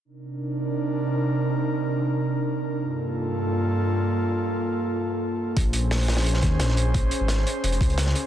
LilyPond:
<<
  \new Staff \with { instrumentName = "Analog synth pad" } { \time 4/4 \key g \minor \tempo 4 = 174 <c d' ees' bes'>1~ | <c d' ees' bes'>1 | <g, bes f' a'>1~ | <g, bes f' a'>1 |
<des' aes' c''>1~ | <des' aes' c''>1 | }
  \new Staff \with { instrumentName = "Detuned saw bass" } { \clef bass \time 4/4 \key g \minor r1 | r1 | r1 | r1 |
bes,,2~ bes,,8 ees,8 bes,,4~ | bes,,8 r16 aes,,8. r8 f,,8 des,4 r8 | }
  \new DrumStaff \with { instrumentName = "Drums" } \drummode { \time 4/4 r4 r4 r4 r4 | r4 r4 r4 r4 | r4 r4 r4 r4 | r4 r4 r4 r4 |
<hh bd>8 hh8 <hho sn>8 <hho sn>16 <hho sn>16 hh16 sn16 <hh bd sn>8 <hh sn>16 sn16 hh8 | <hh bd>8 hh8 <hh sn>8 hh8 hh16 hh16 <hh bd>16 hh16 <hh sn>16 sn16 hh8 | }
>>